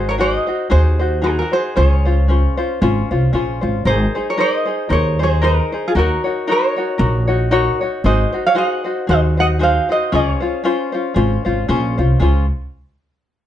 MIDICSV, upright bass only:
0, 0, Header, 1, 2, 480
1, 0, Start_track
1, 0, Key_signature, -5, "major"
1, 0, Tempo, 522648
1, 1614, Time_signature, 4, 2, 24, 8
1, 12368, End_track
2, 0, Start_track
2, 0, Title_t, "Upright bass"
2, 0, Program_c, 0, 32
2, 0, Note_on_c, 0, 32, 96
2, 321, Note_off_c, 0, 32, 0
2, 656, Note_on_c, 0, 39, 105
2, 1281, Note_off_c, 0, 39, 0
2, 1625, Note_on_c, 0, 37, 103
2, 2248, Note_off_c, 0, 37, 0
2, 2588, Note_on_c, 0, 32, 107
2, 2761, Note_off_c, 0, 32, 0
2, 2855, Note_on_c, 0, 36, 76
2, 3041, Note_off_c, 0, 36, 0
2, 3060, Note_on_c, 0, 34, 82
2, 3304, Note_off_c, 0, 34, 0
2, 3330, Note_on_c, 0, 32, 82
2, 3519, Note_off_c, 0, 32, 0
2, 3538, Note_on_c, 0, 32, 94
2, 3715, Note_off_c, 0, 32, 0
2, 4501, Note_on_c, 0, 39, 110
2, 5126, Note_off_c, 0, 39, 0
2, 5465, Note_on_c, 0, 39, 97
2, 5640, Note_off_c, 0, 39, 0
2, 6422, Note_on_c, 0, 34, 112
2, 7046, Note_off_c, 0, 34, 0
2, 7385, Note_on_c, 0, 32, 96
2, 7560, Note_off_c, 0, 32, 0
2, 8348, Note_on_c, 0, 39, 110
2, 8969, Note_off_c, 0, 39, 0
2, 9298, Note_on_c, 0, 37, 94
2, 9474, Note_off_c, 0, 37, 0
2, 10248, Note_on_c, 0, 32, 104
2, 10427, Note_off_c, 0, 32, 0
2, 10526, Note_on_c, 0, 32, 78
2, 10714, Note_off_c, 0, 32, 0
2, 10737, Note_on_c, 0, 34, 95
2, 10980, Note_off_c, 0, 34, 0
2, 11008, Note_on_c, 0, 36, 81
2, 11195, Note_off_c, 0, 36, 0
2, 11205, Note_on_c, 0, 37, 88
2, 11461, Note_off_c, 0, 37, 0
2, 12368, End_track
0, 0, End_of_file